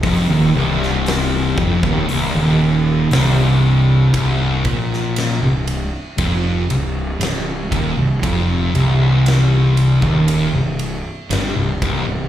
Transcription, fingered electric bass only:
X:1
M:4/4
L:1/16
Q:1/4=59
K:Cm
V:1 name="Fingered electric bass" clef=bass
F,,, E,,, C,,,4 F,,, E,,, C,,, E,,,3 C,,,4 | C,,,2 B,,,3 C,,,2 z F,,,2 C,,,2 C,,,2 E,,, C,,, | F,,,2 C,,,4- C,,, E,,,2 C,,,2 z G,,, C,,, C,,, C,,, |]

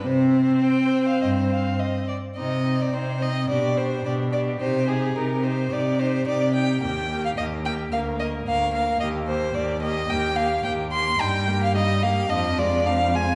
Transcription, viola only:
X:1
M:4/4
L:1/8
Q:1/4=108
K:Cm
V:1 name="Viola"
C6- C z | C C C C D D D D | E E E E E E E E | B, B, B, B, B, B, B, B, |
B, B, B, B, B, B, B, B, | [K:Eb] G, B, G, B, F, A, F, A, |]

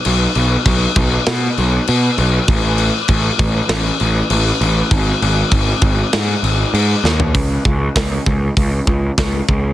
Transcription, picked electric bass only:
X:1
M:4/4
L:1/8
Q:1/4=99
K:G#phr
V:1 name="Picked electric bass" clef=bass
B,,, B,,, B,,, B,,, B,, B,,, B,, B,,, | A,,,2 A,,, A,,, A,,, A,,, A,,, A,,, | G,,, G,,, G,,, G,,, G,, G,,, G,, D,, | C,, C,, C,, C,, C,, C,, C,, C,, |]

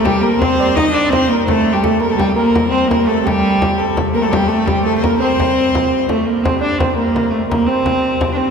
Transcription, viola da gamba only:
X:1
M:3/4
L:1/16
Q:1/4=169
K:Gm
V:1 name="Viola da gamba"
G,2 B,2 C4 E2 D2 | C2 B,2 A,3 G, A,2 B, A, | G,2 B,4 C2 B,2 A,2 | G,8 z2 B, A, |
G,2 A,2 G,2 A,2 B,2 C2- | C8 A,2 B,2 | C2 D2 C2 B,4 A,2 | B,2 C6- C3/2 D/2 C2 |]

